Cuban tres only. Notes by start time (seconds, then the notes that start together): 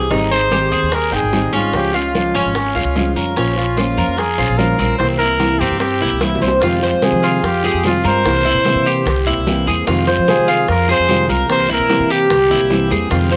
Already playing: G#4
0.11 D#4
0.52 G4
0.72 G#4
1.12 G5
1.53 C#4
1.94 F4
2.35 C#4
2.75 F4
3.16 A#4
3.36 C#4
3.77 F4
3.98 A#4
4.38 F4
4.79 C4
5.20 E4
5.61 C4
6.02 E4
6.42 C5
6.62 F4
6.83 C5
7.23 F4
7.64 G#4
8.05 A#4
8.45 E4
8.86 G4
9.27 E4
9.67 G#4
9.87 F4
10.07 C5
10.48 F4
10.89 G#4
11.29 A#4
11.69 E4
12.10 G4
12.51 E4
12.91 G#4
13.11 F4
13.31 C5